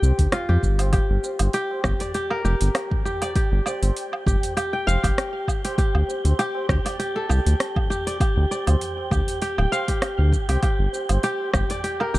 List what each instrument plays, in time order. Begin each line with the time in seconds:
Already playing: kora G4 G5
0.02 analog synth bass C2, tabla na, shaker
0.19 analog synth bass D2, kick, open hi-hat, tabla ge, shaker
0.32 kora F4, cross-stick, open hi-hat, low woodblock, shaker
0.49 analog synth bass F2, kora G4, tabla na
0.63 analog synth bass G1, kick, shaker
0.79 open hi-hat, tabla na, low woodblock, shaker
0.93 kora G4, synth texture G5, kick, open hi-hat, low woodblock, shaker
1.10 analog synth bass G1
1.24 tabla tin, shaker
1.39 analog synth bass G1, open hi-hat, tabla na, tabla tin, low woodblock, shaker
1.53 kora G4, open hi-hat, shaker
1.71 tabla na
1.84 analog synth bass G1, kora G4, kick, cross-stick, tabla ge, low woodblock, shaker
2.00 kora D5, open hi-hat, tabla tin, shaker
2.14 kora G4, open hi-hat, shaker
2.30 kora A#4, low woodblock
2.45 analog synth bass F1, kora G4, shaker
2.61 analog synth bass G1, open hi-hat, shaker
2.75 cross-stick, open hi-hat, low woodblock, shaker
2.91 kick, tabla ge
3.05 kora G4, shaker
3.22 kora D5, open hi-hat, tabla tin, low woodblock, shaker
3.36 kora G4, kick, open hi-hat, shaker
3.52 analog synth bass G1
3.66 kora D5, tabla tin, low woodblock, shaker
3.83 analog synth bass G1, open hi-hat, tabla na, tabla tin, shaker
3.97 open hi-hat, shaker
4.13 low woodblock
4.26 analog synth bass G1, kora G4, kick, tabla ge, shaker
4.43 open hi-hat, tabla tin, shaker
4.57 kora G4, open hi-hat, low woodblock, shaker
4.73 kora G5
4.87 analog synth bass F1, kora F5, tabla na, shaker
5.04 analog synth bass G1, kora G4, kick, open hi-hat, low woodblock, shaker
5.18 cross-stick, open hi-hat, shaker
5.48 kick, low woodblock, shaker
5.65 kora G4, open hi-hat, tabla na, shaker
5.78 kora G4, kick, open hi-hat, shaker
5.95 analog synth bass D2, low woodblock
6.08 tabla tin, shaker
6.25 analog synth bass D2, open hi-hat, tabla na, tabla tin, shaker
6.39 kora G4, open hi-hat, low woodblock, shaker
6.55 tabla na
6.69 analog synth bass D2, kora G4, kick, cross-stick, tabla ge, shaker
6.85 kora D5, open hi-hat, tabla tin, low woodblock, shaker
6.99 kora G4, open hi-hat, shaker
7.16 kora A4
7.29 analog synth bass C2, kora G4, low woodblock, shaker
7.46 analog synth bass D2, open hi-hat, shaker
7.60 cross-stick, open hi-hat, shaker
7.76 kick, tabla ge, low woodblock
7.90 kora G4, shaker
8.06 kora D5, open hi-hat, tabla tin, shaker
8.20 kora G4, kick, open hi-hat, low woodblock, shaker
8.37 analog synth bass D2
8.51 kora D5, tabla tin, shaker
8.67 analog synth bass D2, open hi-hat, tabla na, tabla tin, tabla ge, low woodblock, shaker
8.81 open hi-hat, shaker
8.98 tabla na
9.11 analog synth bass D2, kora G4, kick, tabla ge, low woodblock, shaker
9.27 open hi-hat, tabla tin, shaker
9.42 kora G4, open hi-hat, shaker
9.58 analog synth bass D1, kora G5, low woodblock
9.72 kora F5, tabla na, shaker
9.88 kora G4, kick, open hi-hat, shaker
10.02 cross-stick, open hi-hat, low woodblock, shaker
10.19 analog synth bass D2
10.32 kick, shaker
10.49 analog synth bass C2, kora G4, open hi-hat, tabla na, low woodblock, shaker
10.63 kora G4, kick, open hi-hat, low woodblock, shaker
10.79 analog synth bass G1
10.93 tabla tin, shaker
11.09 analog synth bass G1, open hi-hat, tabla na, tabla tin, low woodblock, shaker
11.23 kora G4, open hi-hat, shaker
11.40 tabla na
11.54 analog synth bass G1, kora G4, kick, cross-stick, tabla ge, low woodblock, shaker
11.70 kora D5, open hi-hat, tabla tin, shaker
11.84 kora G4, open hi-hat, shaker
12.00 kora A#4, low woodblock
12.14 analog synth bass F1, kora G4, shaker